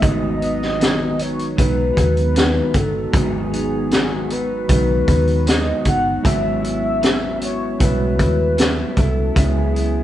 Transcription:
0.01 picked electric bass G#1, clean electric guitar G#2 D#3 F#3 B3 D#4, analog synth pad D#3 F#3 B3 F#4, tine electric piano G#3 D#4 F#4 A#4, soft synth lead D#5, kick, closed hi-hat
0.10 tine electric piano B4
0.40 clean electric guitar F#3 B3 D#4, closed hi-hat
0.62 snare
0.79 clean electric guitar G#2 D#3 F#3 B3 D#4, snare, closed hi-hat
1.18 clean electric guitar F#3 B3 D#4, soft synth lead C#5, closed hi-hat
1.39 closed hi-hat
1.56 picked electric bass B1, clean electric guitar D#3 F#3 B3 D#4, tine electric piano G#3 D#4 F#4 B4, soft synth lead B4, kick, closed hi-hat
1.94 picked electric bass D#2, clean electric guitar F#3 B3 D#4, kick
1.98 closed hi-hat
2.17 closed hi-hat
2.35 clean electric guitar G#2 D#3 F#3 B3 D#4, snare, closed hi-hat
2.74 picked electric bass G1, clean electric guitar F#3 B3 D#4, soft synth lead A4, kick, closed hi-hat
3.12 picked electric bass G#1, clean electric guitar G#2 D#3 F#3 B3 D#4, tine electric piano G#3 D#4 F#4 B4, soft synth lead G#4, kick, closed hi-hat
3.51 clean electric guitar F#3 B3 D#4, closed hi-hat
3.91 clean electric guitar G#2 D#3 F#3 B3 D#4, snare, closed hi-hat
4.30 clean electric guitar F#3 B3 D#4, soft synth lead B4, closed hi-hat
4.67 picked electric bass B1, clean electric guitar D#3 F#3 B3 D#4, tine electric piano G#3 D#4 F#4 B4, kick, closed hi-hat
5.08 picked electric bass D#2, clean electric guitar F#3 B3 D#4, kick, closed hi-hat
5.27 closed hi-hat
5.46 clean electric guitar G#2 D#3 F#3 B3 D#4, soft synth lead D#5, snare, closed hi-hat
5.85 picked electric bass G1, clean electric guitar F#3 B3 D#4, soft synth lead F#5, kick, closed hi-hat
6.22 picked electric bass G#1, clean electric guitar G#2 C#3 F#3 B3 E4, tine electric piano G#3 E4 F#4 C#5, analog synth pad C#4 E4, soft synth lead E5, kick, closed hi-hat
6.62 clean electric guitar F#3 B3 E4, closed hi-hat
7.01 clean electric guitar G#2 C#3 F#3 B3 E4, snare, closed hi-hat
7.40 clean electric guitar F#3 B3 E4, closed hi-hat
7.45 soft synth lead C#5
7.79 picked electric bass B1, clean electric guitar C#3 F#3 B3 E4, tine electric piano G3 E4 F#4 C#5, soft synth lead B4, kick, closed hi-hat
7.85 tine electric piano G#3
8.18 picked electric bass D#2, clean electric guitar F#3 B3 E4, kick, closed hi-hat
8.57 clean electric guitar G#2 C#3 F#3 B3 E4, snare, closed hi-hat
8.96 picked electric bass C2, clean electric guitar F#3 B3 E4, soft synth lead A4, kick, closed hi-hat
9.34 picked electric bass C#2, analog synth pad C#3 B3 E4, clean electric guitar C#3 G#3 B3 E4, tine electric piano G#3 C#4 E4 B4, soft synth lead G#4, kick, closed hi-hat
9.74 clean electric guitar G#3 B3 E4, closed hi-hat

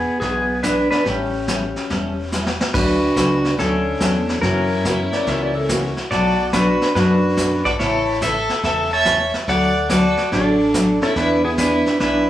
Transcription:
Already playing: pedal steel guitar B3 G#4
0.20 fretless electric bass B1, steel-string acoustic guitar E3 B3 D4 G#4, pedal steel guitar B3 G#4, brush sweep, kick, snare
0.63 steel-string acoustic guitar E3 B3 D4 G#4, pedal steel guitar D4 B4, kick, snare, hi-hat pedal
0.91 pedal steel guitar D4 B4, snare
1.05 fretless electric bass A1, steel-string acoustic guitar E3 G3 C#4 E4 A4, pedal steel guitar C#4 G4, brush sweep, kick, snare
1.48 steel-string acoustic guitar E3 G3 C#4 E4 A4, kick, snare, hi-hat pedal
1.76 snare
1.90 fretless electric bass E1, steel-string acoustic guitar E3 G3 C#4 E4 A4, brush sweep, kick, snare
2.32 steel-string acoustic guitar E3 G3 C#4 E4 A4, snare, hi-hat pedal
2.46 snare
2.60 snare
2.74 fretless electric bass D2, steel-string acoustic guitar D3 F#3 A3 C#4 F#4, pedal steel guitar D4 B4, fiddle F#4, brush sweep, kick, snare, crash
3.15 fretless electric bass C#2, steel-string acoustic guitar D3 F#3 A3 C#4 F#4, kick, snare, hi-hat pedal
3.44 snare
3.57 fretless electric bass D2, steel-string acoustic guitar D3 F#3 A3 C#4 F#4, pedal steel guitar C#4 A4, fiddle D4, brush sweep, kick, snare
4.00 fretless electric bass E2, steel-string acoustic guitar D3 F#3 A3 C#4 F#4, kick, snare, hi-hat pedal
4.29 snare
4.42 fretless electric bass F#2, steel-string acoustic guitar C#3 E3 A#3 C#4 F#4, pedal steel guitar C#4 A#4, fiddle E4, brush sweep, kick, snare
4.85 steel-string acoustic guitar C#3 E3 A#3 C#4 F#4, kick, snare, hi-hat pedal
5.12 electric slide guitar D5, snare
5.27 fretless electric bass C#2, steel-string acoustic guitar C#3 E3 A#3 C#4 F#4, electric slide guitar E5, brush sweep, kick, snare
5.41 electric slide guitar D5
5.55 electric slide guitar A4
5.69 steel-string acoustic guitar C#3 E3 A#3 C#4 F#4, electric slide guitar F#4, kick, snare, hi-hat pedal
5.97 snare
6.10 fretless electric bass B1, steel-string acoustic guitar B2 F#3 A3 D4 F#4, pedal steel guitar F#4 D5, fiddle A4, brush sweep, kick, snare
6.53 steel-string acoustic guitar B2 F#3 A3 D4 F#4, pedal steel guitar D4 B4, fiddle F#4, kick, snare, hi-hat pedal
6.81 snare
6.95 fretless electric bass F#2, steel-string acoustic guitar B2 F#3 A3 D4 F#4, pedal steel guitar D4 B4, fiddle F#4, brush sweep, kick, snare
7.37 steel-string acoustic guitar B2 F#3 A3 D4 F#4, kick, snare, hi-hat pedal
7.65 pedal steel guitar F#4 D5, fiddle A4, kick, snare
7.79 fretless electric bass A1, steel-string acoustic guitar C#3 E3 A3 C#4 A4, pedal steel guitar E4 C#5, fiddle A4, brush sweep, kick, snare
8.21 steel-string acoustic guitar C#3 E3 A3 C#4 A4, fiddle A4, pedal steel guitar A4 E5, kick, snare, hi-hat pedal
8.49 snare
8.63 fretless electric bass E1, steel-string acoustic guitar C#3 E3 A3 C#4 A4, fiddle A4, pedal steel guitar A4 E5, brush sweep, kick, snare
8.92 pedal steel guitar C#5 A5, fiddle E5
9.05 steel-string acoustic guitar C#3 E3 A3 C#4 A4, kick, snare, hi-hat pedal
9.34 snare
9.47 fretless electric bass D2, steel-string acoustic guitar D3 F#3 A3 D4 F#4, pedal steel guitar A4 F#5, fiddle D5, brush sweep, kick, snare
9.89 steel-string acoustic guitar D3 F#3 A3 D4 F#4, pedal steel guitar F#4 D5, fiddle A4, kick, snare, hi-hat pedal
10.17 snare
10.31 fretless electric bass A1, steel-string acoustic guitar D3 F#3 A3 D4 F#4, fiddle D4, pedal steel guitar D4 A4, brush sweep, kick, snare
10.74 steel-string acoustic guitar D3 F#3 A3 D4 F#4, kick, snare, hi-hat pedal
11.02 pedal steel guitar C#4 A4, fiddle E4, snare
11.15 fretless electric bass E2, steel-string acoustic guitar E3 B3 D4 G#4, pedal steel guitar D4 B4, fiddle E4, brush sweep, kick, snare
11.45 pedal steel guitar B3 G#4, fiddle E4
11.57 steel-string acoustic guitar E3 B3 D4 G#4, pedal steel guitar D4 B4, fiddle E4, kick, snare, hi-hat pedal
11.86 snare
11.99 fretless electric bass B1, steel-string acoustic guitar E3 B3 D4 G#4, pedal steel guitar D4 B4, fiddle E4, brush sweep, kick, snare

